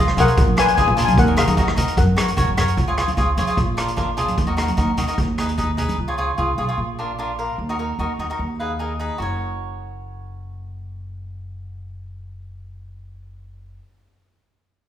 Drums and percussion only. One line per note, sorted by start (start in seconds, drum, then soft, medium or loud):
0.08 cross-stick medium
0.17 closed hi-hat medium
0.17 high conga medium
0.17 low conga medium
0.28 closed hi-hat medium
0.37 kick loud
0.37 closed hi-hat medium
0.48 high conga medium
0.58 cross-stick medium
0.58 closed hi-hat loud
0.68 closed hi-hat medium
0.78 kick loud
0.78 closed hi-hat medium
0.97 closed hi-hat medium
0.97 low conga medium
1.08 closed hi-hat medium
1.08 high conga medium
1.18 kick loud
1.18 closed hi-hat medium
1.18 low conga medium
1.37 cross-stick medium
1.37 closed hi-hat medium
1.37 low conga medium
1.47 closed hi-hat medium
1.47 high conga medium
1.57 kick medium
1.57 closed hi-hat medium
1.68 cross-stick medium
1.77 closed hi-hat loud
1.77 low conga medium
1.88 closed hi-hat medium
1.97 kick loud
1.97 closed hi-hat medium
1.97 high conga medium
2.18 cross-stick medium
2.18 closed hi-hat loud
2.18 high conga medium
2.28 closed hi-hat medium
2.37 kick medium
2.37 closed hi-hat medium
2.37 low conga medium
2.58 cross-stick medium
2.58 closed hi-hat medium
2.58 low conga medium
2.68 closed hi-hat medium
2.77 kick loud
2.77 closed hi-hat medium
2.77 low conga medium
2.98 cross-stick medium
2.98 closed hi-hat medium
3.08 closed hi-hat medium
3.08 high conga medium
3.17 kick medium
3.17 closed hi-hat medium
3.37 closed hi-hat medium
3.37 high conga medium
3.37 low conga medium
3.48 closed hi-hat medium
3.57 kick medium
3.57 closed hi-hat medium
3.78 cross-stick medium
3.78 closed hi-hat medium
3.88 closed hi-hat medium
3.97 kick medium
3.97 closed hi-hat medium
4.17 closed hi-hat medium
4.17 low conga medium
4.28 closed hi-hat medium
4.28 high conga medium
4.38 kick loud
4.38 closed hi-hat medium
4.38 low conga medium
4.58 cross-stick medium
4.58 closed hi-hat medium
4.68 closed hi-hat medium
4.68 high conga medium
4.77 kick medium
4.77 closed hi-hat medium
4.97 closed hi-hat medium
4.97 high conga medium
4.97 low conga medium
5.08 closed hi-hat medium
5.18 kick loud
5.18 closed hi-hat medium
5.38 cross-stick medium
5.38 closed hi-hat medium
5.49 closed hi-hat medium
5.58 kick medium
5.58 closed hi-hat medium
5.78 closed hi-hat medium
5.78 low conga medium
5.89 closed hi-hat medium
5.89 high conga medium